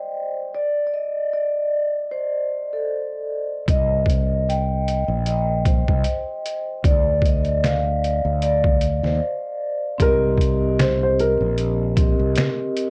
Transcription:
Already playing: C5 D5 D#5 G5
0.54 D5
0.87 D5
0.94 D#5
1.33 D5
2.11 C5
2.73 A4
3.68 C2 D#5, kick, closed hi-hat
4.06 kick, closed hi-hat
4.49 G5, closed hi-hat
4.88 closed hi-hat
5.08 A#1
5.26 D#5, closed hi-hat
5.65 C5, kick, closed hi-hat
5.88 C2, kick
6.04 closed hi-hat
6.46 closed hi-hat
6.84 D2 D5, kick, closed hi-hat
7.22 D#5, kick, closed hi-hat
7.45 closed hi-hat
7.64 F5, finger snap, snare, closed hi-hat
8.04 closed hi-hat
8.25 D2
8.42 D5, closed hi-hat
8.64 kick
8.81 closed hi-hat
9.03 D#2 C5, snare
9.98 C2 C4 G4 A#4, kick, closed hi-hat
10.03 D#5
10.38 kick, closed hi-hat
10.79 C5, finger snap, snare, closed hi-hat
11.03 C5
11.19 A#4, closed hi-hat
11.41 A#1
11.58 closed hi-hat
11.96 C4 G4 A#4, kick, closed hi-hat
12.01 D#5
12.19 C2
12.36 finger snap, snare, closed hi-hat
12.77 closed hi-hat

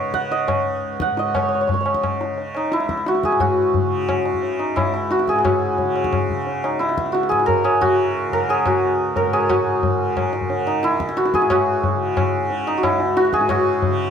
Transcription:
Already playing: C#2 G#2 C#3 B4 C#5 D#5 F#5
0.10 C#3 F#5, tabla ke
0.31 D#5, tabla te
0.48 C#5, tabla na, tabla ge
0.60 C#2
1.00 F#5, tabla ke
1.11 G#2
1.17 D#5, tabla te
1.35 G#2 C#5, tabla na, tabla ge
1.42 C#5
1.49 C#5
1.55 C#5
1.61 C#5
1.67 C#5, tabla tin, tabla ge
1.74 C#5
1.81 C#5
1.85 C#3, tabla na
1.94 tabla ke
2.04 tabla na, tabla ge
2.21 tabla te
2.34 C#3
2.38 tabla tin
2.55 D#4, tabla na
2.72 E4, tabla te
2.80 C#2, tabla te
2.89 tabla ke
2.98 tabla te
3.06 F#4, tabla te
3.15 tabla te
3.24 G#4, tabla ke
3.32 G#2, tabla te
3.40 F#4, tabla na, tabla ge
3.74 tabla tin, tabla ge
3.85 C#3
4.09 tabla na, tabla ge
4.25 tabla te
4.34 C#3, tabla ge
4.43 tabla tin
4.59 D#4
4.76 E4, tabla na, tabla ge
4.82 C#2
4.94 tabla te
5.11 F#4, tabla te
5.19 tabla te
5.28 G#4, tabla ke
5.33 G#2, tabla te
5.38 G#4
5.44 F#4, tabla na, tabla ge
5.78 tabla tin, tabla ge
5.83 C#3
5.96 tabla na
6.04 tabla ke
6.13 tabla na, tabla ge
6.30 C#3, tabla ge
6.47 tabla tin
6.64 D#4, tabla na
6.79 C#2 E4, tabla te
6.89 tabla te
6.98 tabla ke
7.06 tabla te
7.12 F#4, tabla te
7.23 tabla te
7.29 G#2 G#4, tabla ke
7.40 tabla te
7.46 A#4, tabla tin, tabla ge
7.64 G#4, tabla na
7.80 C#3 F#4, tabla na, tabla ge
8.30 C#3 A#4, tabla tin, tabla ge
8.49 G#4, tabla na
8.66 F#4, tabla na, tabla ge
8.78 C#2
9.16 A#4, tabla tin, tabla ge
9.26 G#2
9.33 G#4, tabla na
9.49 G#2 F#4, tabla na, tabla ge
9.83 tabla tin, tabla ge
9.98 C#3
10.17 tabla na, tabla ge
10.33 tabla te
10.41 tabla ge
10.48 C#3, tabla tin
10.67 D#4
10.83 E4, tabla te
10.91 tabla te
10.96 C#2, tabla ke
11.09 tabla te
11.17 F#4, tabla te
11.26 tabla te
11.34 G#4, tabla ke
11.42 G#2, tabla te
11.50 F#4, tabla na, tabla ge
11.84 tabla tin, tabla ge
11.95 C#3
12.17 tabla na, tabla ge
12.43 C#3
12.50 tabla tin
12.67 D#4
12.78 F#4
12.83 E4, tabla na, tabla ge
12.90 C#2
13.00 tabla te
13.17 F#4, tabla te
13.25 tabla te
13.33 G#4, tabla ke
13.39 G#2, tabla te
13.49 F#4, tabla na, tabla ge
13.82 tabla tin, tabla ge
13.87 C#3

